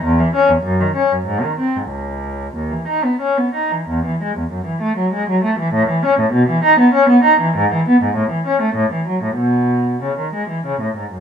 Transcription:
0.04 0.18 E2 medium
0.20 0.34 E3 medium
0.35 0.49 C#4 medium
0.49 0.64 E2 medium
0.63 0.78 F#2 medium
0.81 0.95 D#3 medium
0.95 1.10 C#4 medium
1.12 1.26 F#2 medium
1.25 1.41 G#2 medium
1.43 1.58 D#3 medium
1.60 1.74 C4 medium
1.76 1.91 G#2 soft
1.90 2.54 C#2 soft
2.55 2.71 D#2 soft
2.71 2.87 E3 soft
2.88 3.03 D#4 soft
3.04 3.20 B3 soft
3.21 3.37 C#4 soft
3.38 3.54 B3 soft
3.55 3.71 D#4 soft
3.71 3.88 E3 soft
3.89 4.05 E2 medium
4.06 4.21 E3 soft
4.23 4.37 G#3 medium
4.38 4.52 E2 soft
4.52 4.67 F#2 medium
4.66 4.82 E3 medium
4.82 4.98 A3 medium
4.98 5.13 F#3 medium
5.13 5.29 G#3 medium
5.30 5.44 F#3 medium
5.44 5.59 A3 medium
5.59 5.74 E3 medium
5.74 5.89 A2 medium
5.89 6.04 E3 medium
6.05 6.19 C#4 medium
6.20 6.34 A2 medium
6.33 6.48 B2 medium
6.49 6.64 E3 medium
6.64 6.78 D#4 medium
6.80 6.94 B3 medium
6.94 7.08 C#4 medium
7.09 7.24 B3 medium
7.24 7.38 D#4 medium
7.40 7.55 E3 medium
7.57 7.71 G#2 medium
7.72 7.86 E3 medium
7.88 8.01 B3 medium
8.03 8.16 G#2 medium
8.16 8.30 A2 medium
8.31 8.45 E3 medium
8.47 8.61 C#4 medium
8.62 8.76 A3 medium
8.75 8.90 A2 medium
8.92 9.06 E3 medium
9.08 9.22 F#3 soft
9.23 9.38 A2 soft
9.37 10.00 B2 medium
10.02 10.17 C#3 medium
10.18 10.33 D#3 soft
10.34 10.49 G#3 soft
10.50 10.64 E3 soft
10.66 10.80 C#3 soft
10.81 10.96 A2 soft
10.97 11.11 G#2 soft
11.12 11.20 F#2 soft

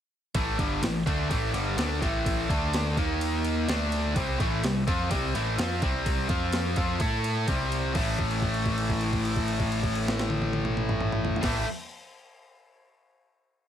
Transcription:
0.35 0.56 A1 medium
0.35 0.57 A2 medium
0.35 0.58 E3 loud
0.35 0.58 A3 loud
0.35 kick loud
0.35 ride loud
0.59 0.80 G1 medium
0.59 0.81 G2 medium
0.59 0.81 D3 medium
0.59 0.81 G3 loud
0.59 kick loud
0.59 ride medium
0.82 1.04 A1 medium
0.82 1.01 A2 medium
0.82 1.01 E3 medium
0.82 snare loud
0.82 ride loud
1.06 1.28 D2 medium
1.06 1.29 D3 medium
1.06 1.29 A3 loud
1.06 1.29 D4 loud
1.06 kick loud
1.06 ride medium
1.30 1.52 A1 loud
1.30 1.52 A2 medium
1.30 1.53 E3 medium
1.30 1.53 A3 loud
1.30 kick loud
1.30 ride loud
1.53 1.75 G1 medium
1.53 1.76 G2 medium
1.53 1.76 D3 medium
1.53 1.77 G3 medium
1.53 ride medium
1.77 1.99 D2 loud
1.77 2.00 D3 medium
1.77 2.00 A3 loud
1.77 2.01 D4 medium
1.77 snare loud
1.77 ride loud
2.02 2.46 A1 loud
2.02 2.48 A2 medium
2.02 2.48 E3 medium
2.02 2.48 A3 loud
2.02 kick loud
2.02 ride medium
2.26 kick loud
2.26 ride loud
2.50 2.93 D2 medium
2.50 2.96 D3 medium
2.50 2.96 A3 medium
2.50 2.96 D4 medium
2.50 kick loud
2.50 ride medium
2.73 snare loud
2.73 ride medium
2.97 3.64 D#2 medium
2.97 3.68 D#3 medium
2.97 3.68 A#3 loud
2.97 3.68 D#4 loud
2.97 kick loud
2.97 ride medium
3.21 ride medium
3.44 ride medium
3.68 4.12 D2 loud
3.68 4.15 D3 medium
3.68 4.16 A3 medium
3.68 4.16 D4 loud
3.68 snare loud
3.68 ride loud
3.92 ride medium
4.16 4.38 C2 loud
4.16 4.39 C3 loud
4.16 4.39 G3 loud
4.16 4.39 C4 loud
4.16 kick loud
4.16 ride loud
4.39 4.62 A1 loud
4.39 4.62 A2 medium
4.39 4.63 E3 medium
4.39 4.63 A3 loud
4.39 kick loud
4.39 ride medium
4.63 4.86 C2 medium
4.63 4.82 C3 medium
4.63 4.82 G3 medium
4.63 snare loud
4.63 ride medium
4.87 5.10 F2 loud
4.87 5.10 F3 loud
4.87 5.10 C4 loud
4.87 5.10 F4 loud
4.87 kick loud
4.87 ride medium
5.10 5.33 C2 medium
5.10 5.34 C3 loud
5.10 5.34 G3 loud
5.10 5.34 C4 loud
5.10 kick loud
5.10 ride loud
5.35 5.57 A1 medium
5.35 5.58 A2 medium
5.35 5.58 E3 loud
5.35 5.58 A3 loud
5.35 ride medium
5.58 5.81 F2 loud
5.58 5.82 F3 loud
5.58 5.82 C4 loud
5.58 5.82 F4 loud
5.58 snare loud
5.58 ride loud
5.82 6.27 C2 loud
5.82 6.29 C3 medium
5.82 6.29 G3 medium
5.82 6.29 C4 loud
5.82 kick loud
5.82 ride medium
6.06 kick loud
6.06 ride loud
6.29 6.74 F2 medium
6.29 6.76 F3 medium
6.29 6.76 C4 loud
6.29 6.76 F4 medium
6.29 kick loud
6.29 ride medium
6.52 snare loud
6.52 ride loud
6.76 6.99 F2 loud
6.76 7.00 F3 medium
6.76 7.00 C4 loud
6.76 7.00 F4 loud
6.76 kick loud
6.76 ride medium
7.00 7.45 A2 medium
7.00 7.47 A3 medium
7.00 7.48 E4 medium
7.00 7.48 A4 loud
7.00 kick loud
7.00 ride medium
7.24 ride medium
7.48 7.92 C2 medium
7.48 7.94 C3 medium
7.48 7.95 G3 medium
7.48 7.95 C4 loud
7.48 kick loud
7.48 ride loud
7.72 ride medium
7.94 11.33 A1 loud
7.94 11.41 A2 medium
7.94 11.43 E3 medium
7.94 11.45 A3 loud
7.94 kick loud
7.94 crash medium
8.18 kick medium
8.18 crash soft
8.31 crash soft
8.42 kick medium
8.42 crash soft
8.54 crash soft
8.66 kick medium
8.66 crash soft
8.78 crash medium
8.89 kick medium
8.89 crash soft
9.01 crash soft
9.13 kick medium
9.13 crash soft
9.25 crash medium
9.36 kick medium
9.36 crash soft
9.48 crash medium
9.60 kick medium
9.60 crash soft
9.72 crash medium
9.83 kick medium
9.83 crash medium
9.95 crash medium
10.08 snare medium
10.19 snare medium
10.30 high tom medium
10.42 high tom medium
10.53 high tom medium
10.65 mid tom loud
10.77 mid tom loud
10.89 mid tom loud
11.01 mid tom loud
11.12 mid tom loud
11.25 floor tom loud
11.36 floor tom loud
11.41 11.63 A1 loud
11.41 11.63 A2 medium
11.41 11.64 E3 medium
11.41 kick loud
11.41 snare loud
11.41 crash loud
11.46 11.65 A3 loud

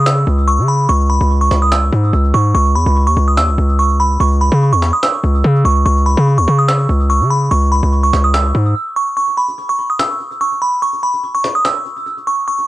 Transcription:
0.00 0.25 C#3 loud
0.06 0.45 E6 medium
0.06 cajon slap loud
0.17 cajon slap soft
0.27 0.60 C#2 loud
0.27 cajon slap soft
0.38 cajon slap soft
0.48 0.67 C#6 medium
0.48 cajon slap soft
0.59 0.88 C#3 loud
0.59 cajon slap soft
0.68 0.87 B5 medium
0.68 cajon slap soft
0.89 1.19 C#2 loud
0.89 1.08 C#6 medium
0.89 cajon slap soft
1.00 cajon slap soft
1.10 1.39 B5 medium
1.10 cajon slap soft
1.21 1.50 C#2 loud
1.21 cajon slap soft
1.30 cajon slap soft
1.41 1.60 C#6 medium
1.41 cajon slap soft
1.51 1.91 C#2 loud
1.51 cajon slap medium
1.62 1.71 D#6 medium
1.72 2.30 E6 medium
1.72 cajon slap loud
1.83 cajon slap soft
1.92 2.12 G#2 loud
1.92 cajon slap soft
2.04 cajon slap soft
2.13 2.33 C#2 loud
2.13 cajon slap soft
2.24 cajon slap soft
2.34 2.54 G#2 loud
2.34 2.53 C#6 medium
2.34 cajon slap soft
2.55 2.77 C#2 loud
2.55 2.74 C#6 medium
2.55 cajon slap soft
2.66 cajon slap soft
2.75 2.86 E2 loud
2.75 3.05 B5 medium
2.75 cajon slap soft
2.86 3.09 C#2 loud
2.86 cajon slap soft
2.96 cajon slap soft
3.07 3.16 D#2 loud
3.07 3.26 C#6 medium
3.07 cajon slap soft
3.17 3.39 C#2 loud
3.17 cajon slap soft
3.28 3.37 D#6 medium
3.37 3.50 D#2 medium
3.37 3.76 E6 loud
3.37 cajon slap loud
3.48 3.58 C#2 loud
3.48 cajon slap soft
3.58 4.18 C#2 loud
3.58 cajon slap soft
3.69 cajon slap soft
3.79 3.98 C#6 medium
3.79 cajon slap medium
3.90 cajon slap soft
4.00 4.19 B5 medium
4.00 cajon slap soft
4.20 4.51 C#2 loud
4.20 4.39 C#6 medium
4.20 cajon slap soft
4.31 cajon slap soft
4.41 4.71 B5 medium
4.41 cajon slap soft
4.52 4.74 C#3 loud
4.52 cajon slap soft
4.62 cajon slap soft
4.72 4.92 E2 loud
4.72 4.91 C#6 medium
4.72 cajon slap soft
4.82 cajon slap medium
4.93 5.02 D#6 medium
5.03 5.61 E6 medium
5.03 cajon slap loud
5.14 cajon slap soft
5.24 5.43 C#2 loud
5.24 cajon slap soft
5.35 cajon slap soft
5.44 5.64 C#3 loud
5.44 cajon slap soft
5.55 cajon slap soft
5.65 5.85 C#2 loud
5.65 5.84 C#6 medium
5.65 cajon slap soft
5.86 6.16 C#2 loud
5.86 6.04 C#6 medium
5.86 cajon slap soft
5.97 cajon slap soft
6.06 6.36 B5 medium
6.06 cajon slap soft
6.17 6.39 C#3 loud
6.17 cajon slap soft
6.27 cajon slap soft
6.38 6.47 D#2 loud
6.38 6.57 C#6 medium
6.38 cajon slap soft
6.48 6.87 C#3 loud
6.48 cajon slap soft
6.59 6.68 D#6 medium
6.68 7.07 E6 medium
6.68 cajon slap loud
6.80 cajon slap soft
6.89 7.22 C#2 loud
6.89 cajon slap soft
7.00 cajon slap soft
7.10 7.29 C#6 medium
7.10 cajon slap soft
7.21 7.50 C#3 loud
7.21 cajon slap soft
7.30 7.49 B5 medium
7.30 cajon slap soft
7.51 7.82 C#2 loud
7.51 7.70 C#6 medium
7.51 cajon slap soft
7.62 cajon slap soft
7.72 8.02 B5 medium
7.72 cajon slap soft
7.83 8.12 C#2 loud
7.83 cajon slap soft
7.93 cajon slap soft
8.03 8.22 C#6 medium
8.03 cajon slap soft
8.13 8.53 C#2 loud
8.13 cajon slap medium
8.24 8.33 D#6 medium
8.34 8.92 E6 medium
8.34 cajon slap loud
8.45 cajon slap soft
8.55 8.75 G#2 loud
8.55 cajon slap soft
8.66 cajon slap soft
8.96 9.15 C#6 medium
9.17 9.36 C#6 medium
9.17 cajon slap soft
9.28 cajon slap soft
9.37 9.67 B5 medium
9.37 cajon slap soft
9.48 cajon slap soft
9.58 cajon slap soft
9.69 9.88 C#6 medium
9.69 cajon slap soft
9.79 cajon slap soft
9.90 9.99 D#6 medium
9.99 10.38 E6 medium
9.99 cajon slap loud
10.10 cajon slap soft
10.20 cajon slap soft
10.31 cajon slap soft
10.41 10.60 C#6 medium
10.41 cajon slap soft
10.52 cajon slap soft
10.62 10.81 B5 medium
10.62 cajon slap soft
10.82 11.01 C#6 medium
10.82 cajon slap soft
10.93 cajon slap soft
11.03 11.33 B5 medium
11.03 cajon slap soft
11.14 cajon slap soft
11.24 cajon slap soft
11.35 11.54 C#6 medium
11.35 cajon slap soft
11.44 cajon slap medium
11.55 11.64 D#6 medium
11.65 12.23 E6 medium
11.65 cajon slap loud
11.76 cajon slap soft
11.86 cajon slap soft
11.97 cajon slap soft
12.06 cajon slap soft
12.17 cajon slap soft
12.27 12.46 C#6 medium
12.27 cajon slap soft
12.48 12.67 C#6 medium
12.48 cajon slap soft
12.59 cajon slap soft

